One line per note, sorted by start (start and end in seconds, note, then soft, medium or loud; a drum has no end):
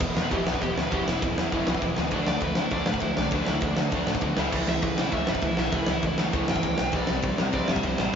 0.00 0.10 E1 medium
0.00 0.13 E2 medium
0.00 0.14 B2 medium
0.00 0.29 E3 medium
0.00 0.30 G#3 medium
0.00 0.30 B3 loud
0.00 0.31 E4 loud
0.00 0.32 G#4 loud
0.00 kick loud
0.00 ride medium
0.14 0.29 E2 medium
0.14 0.25 E2 medium
0.14 0.29 B2 medium
0.14 snare loud
0.22 0.32 B4 medium
0.30 0.41 E1 medium
0.30 0.43 E2 loud
0.30 0.43 B2 loud
0.30 0.90 E3 medium
0.30 0.46 E3 loud
0.30 0.91 G#3 medium
0.30 0.91 B3 medium
0.30 0.91 E4 medium
0.30 0.42 G4 medium
0.30 0.92 G#4 medium
0.30 kick loud
0.30 ride medium
0.42 0.56 B1 medium
0.42 0.59 E2 medium
0.42 0.59 B2 medium
0.42 0.52 E4 medium
0.47 snare loud
0.52 0.61 B4 medium
0.52 kick medium
0.62 0.71 E1 medium
0.62 0.75 E2 medium
0.62 0.76 B2 medium
0.62 0.72 G4 medium
0.62 kick medium
0.62 ride medium
0.73 0.86 D2 medium
0.73 0.90 E2 medium
0.73 0.90 B2 medium
0.73 0.82 E4 medium
0.78 snare medium
0.82 0.92 B4 medium
0.91 1.01 E1 medium
0.91 1.05 E2 medium
0.91 1.05 B2 loud
0.91 1.51 E3 loud
0.91 1.06 E3 medium
0.91 1.51 G#3 loud
0.91 1.51 B3 loud
0.91 1.52 E4 loud
0.91 1.01 G4 medium
0.91 1.52 G#4 loud
0.91 kick loud
0.91 ride medium
1.03 1.20 E2 medium
1.03 1.20 B2 medium
1.03 1.11 E4 medium
1.07 1.16 E1 medium
1.07 snare loud
1.13 2.00 E4 medium
1.22 1.32 E1 loud
1.22 1.35 E2 medium
1.22 1.36 B2 medium
1.22 kick loud
1.22 ride medium
1.37 1.50 E2 medium
1.37 1.47 E2 medium
1.37 1.50 B2 medium
1.37 snare loud
1.52 1.62 E1 medium
1.52 1.66 E2 loud
1.52 1.67 B2 medium
1.52 2.11 E3 medium
1.52 1.67 E3 loud
1.52 2.12 G#3 medium
1.52 2.12 B3 medium
1.52 2.13 E4 medium
1.52 2.13 G#4 medium
1.52 kick loud
1.52 ride medium
1.67 1.77 B1 loud
1.67 1.81 E2 medium
1.67 1.81 B2 medium
1.67 snare loud
1.75 kick medium
1.82 1.91 E1 medium
1.82 1.96 E2 medium
1.82 1.96 B2 medium
1.82 kick loud
1.82 ride medium
1.96 2.11 D2 medium
1.96 2.11 E2 medium
1.96 2.12 B2 medium
1.96 snare loud
2.11 2.21 D2 medium
2.11 2.72 D3 loud
2.11 2.27 D3 medium
2.11 2.72 F#3 loud
2.11 2.27 A3 medium
2.11 2.75 A3 loud
2.11 2.72 D4 loud
2.11 2.27 D4 loud
2.11 2.73 F#4 loud
2.11 kick loud
2.11 ride medium
2.27 2.36 D2 medium
2.27 2.41 D3 medium
2.27 2.40 A3 medium
2.27 2.42 D5 loud
2.27 snare loud
2.40 2.52 D2 medium
2.40 2.56 D3 medium
2.40 2.56 A3 medium
2.40 2.57 B4 medium
2.40 kick loud
2.40 ride medium
2.55 2.66 D3 medium
2.55 2.71 D3 medium
2.55 2.71 A3 medium
2.55 2.72 E4 loud
2.55 snare loud
2.71 2.81 D2 loud
2.71 2.87 D3 medium
2.71 3.31 D3 medium
2.71 3.32 F#3 medium
2.71 2.87 A3 loud
2.71 2.87 D4 loud
2.71 2.88 D5 loud
2.71 kick loud
2.71 ride medium
2.75 3.33 A3 medium
2.75 3.33 D4 medium
2.75 3.34 F#4 medium
2.86 2.98 A2 medium
2.86 3.01 D3 medium
2.86 3.02 A3 medium
2.86 3.02 B4 medium
2.86 snare loud
2.94 kick medium
3.00 3.11 D2 medium
3.00 3.16 D3 medium
3.00 3.16 A3 medium
3.00 3.17 E4 medium
3.00 kick loud
3.00 ride medium
3.17 3.27 B1 medium
3.17 3.31 D3 medium
3.17 3.32 A3 medium
3.17 3.33 D5 medium
3.17 snare loud
3.31 3.42 D2 medium
3.31 3.92 D3 medium
3.31 3.47 D3 medium
3.31 3.92 F#3 loud
3.31 3.47 A3 medium
3.31 3.95 A3 medium
3.31 3.47 D4 medium
3.31 3.93 D4 loud
3.31 3.47 B4 loud
3.31 kick loud
3.31 ride medium
3.35 3.93 F#4 loud
3.46 3.58 D2 medium
3.46 3.62 D3 medium
3.46 3.62 A3 medium
3.46 3.64 E4 medium
3.46 snare loud
3.60 3.72 D2 loud
3.60 3.75 D3 medium
3.60 3.76 A3 medium
3.60 3.78 D4 loud
3.60 kick loud
3.60 ride medium
3.77 3.90 D3 medium
3.77 3.87 D3 medium
3.77 3.91 A3 medium
3.77 snare loud
3.91 4.02 D2 medium
3.91 4.06 D3 loud
3.91 4.37 D3 medium
3.91 4.38 F#3 medium
3.91 4.07 A3 loud
3.91 4.07 D4 loud
3.91 kick loud
3.91 ride medium
3.95 4.39 A3 medium
3.95 4.39 D4 medium
3.95 4.39 F#4 medium
4.07 4.17 A2 medium
4.07 4.21 D3 medium
4.07 4.22 A3 medium
4.07 snare loud
4.15 kick medium
4.21 4.31 D2 medium
4.21 4.36 D3 medium
4.21 4.37 A3 medium
4.21 kick loud
4.21 ride medium
4.37 4.47 C#2 medium
4.37 4.51 A2 loud
4.37 4.97 C#3 medium
4.37 4.52 E3 medium
4.37 4.99 E3 medium
4.37 4.52 A3 loud
4.37 4.97 A3 medium
4.37 4.97 E4 medium
4.37 snare loud
4.52 4.62 C#2 loud
4.52 4.67 A2 medium
4.52 4.67 E3 medium
4.52 4.67 A3 loud
4.52 kick loud
4.52 crash loud
4.67 4.78 C#2 medium
4.67 4.81 A2 medium
4.67 4.81 E3 medium
4.67 4.83 E5 loud
4.67 snare loud
4.82 4.92 C#2 loud
4.82 4.95 A2 medium
4.82 4.96 E3 medium
4.82 4.99 B4 medium
4.82 kick loud
4.82 ride medium
4.96 5.09 A2 medium
4.96 5.08 C#3 medium
4.96 5.56 C#3 medium
4.96 5.09 E3 medium
4.96 5.58 E3 medium
4.96 5.57 A3 medium
4.96 5.60 E4 medium
4.96 5.13 E4 loud
4.96 snare loud
5.10 5.22 C#2 medium
5.10 5.25 A2 loud
5.10 5.26 E3 loud
5.10 5.27 A3 loud
5.10 5.28 E5 loud
5.10 kick loud
5.10 ride medium
5.26 5.39 G#2 loud
5.26 5.41 A2 medium
5.26 5.41 E3 medium
5.26 5.43 B4 medium
5.26 snare loud
5.35 kick medium
5.42 5.52 C#2 medium
5.42 5.56 A2 medium
5.42 5.57 E3 medium
5.42 5.59 E4 medium
5.42 kick loud
5.42 ride medium
5.57 5.68 B1 medium
5.57 5.72 A2 medium
5.57 6.17 C#3 medium
5.57 6.18 E3 medium
5.57 5.72 E3 medium
5.57 6.18 A3 loud
5.57 6.17 E4 loud
5.57 5.74 E5 loud
5.57 snare loud
5.72 5.82 C#2 medium
5.72 5.87 A2 medium
5.72 5.87 E3 loud
5.72 5.88 A3 medium
5.72 5.89 B4 loud
5.72 kick loud
5.72 ride medium
5.86 5.97 C#2 medium
5.86 6.02 A2 medium
5.86 6.02 E3 medium
5.86 snare loud
5.91 6.04 E4 medium
6.03 6.13 C#2 loud
6.03 6.17 A2 medium
6.03 6.17 E3 loud
6.03 6.19 E4 loud
6.03 kick loud
6.03 ride medium
6.18 6.31 A2 medium
6.18 6.28 C#3 medium
6.18 6.79 C#3 medium
6.18 6.32 E3 medium
6.18 6.79 E3 medium
6.18 6.78 A3 medium
6.18 6.78 E4 medium
6.18 snare loud
6.32 6.43 C#2 loud
6.32 6.47 A2 loud
6.32 6.47 E3 medium
6.32 6.48 A3 loud
6.32 kick loud
6.32 ride medium
6.48 6.59 G#2 medium
6.48 6.62 A2 medium
6.48 6.62 E3 medium
6.48 6.93 G5 medium
6.48 snare loud
6.56 kick loud
6.63 6.73 C#2 medium
6.63 6.76 A2 medium
6.63 6.77 E3 medium
6.63 kick medium
6.63 ride medium
6.77 6.89 B1 medium
6.77 6.92 A2 medium
6.77 6.92 E3 medium
6.77 snare loud
6.92 7.03 C2 loud
6.92 7.08 C3 medium
6.92 7.53 C3 loud
6.92 7.08 G3 medium
6.92 7.54 G3 medium
6.92 7.09 C4 medium
6.92 kick loud
6.92 ride medium
6.96 7.54 C4 loud
6.96 7.55 E4 loud
6.96 7.40 D5 medium
7.07 7.19 C2 medium
7.07 7.22 C3 medium
7.07 7.22 G3 medium
7.07 snare loud
7.22 7.33 C2 medium
7.22 7.36 C3 medium
7.22 7.36 G3 loud
7.22 kick loud
7.22 ride medium
7.37 7.51 C3 medium
7.37 7.49 C3 medium
7.37 7.51 G3 medium
7.37 7.54 C5 loud
7.37 snare loud
7.52 7.63 C2 medium
7.52 7.68 C3 loud
7.52 8.13 C3 medium
7.52 7.67 G3 loud
7.52 8.14 G3 medium
7.52 7.68 C4 loud
7.52 8.14 C4 medium
7.52 7.72 D5 loud
7.52 kick loud
7.52 ride medium
7.57 8.15 E4 medium
7.68 7.79 G2 medium
7.68 7.82 C3 medium
7.68 7.83 G3 medium
7.68 7.85 E5 medium
7.68 snare loud
7.76 kick medium
7.83 7.93 C2 medium
7.83 7.97 C3 medium
7.83 7.97 G3 loud
7.83 8.14 C5 loud
7.83 kick loud
7.83 ride medium
7.98 8.08 A1 loud
7.98 8.12 C3 medium
7.98 8.12 G3 loud
7.98 snare loud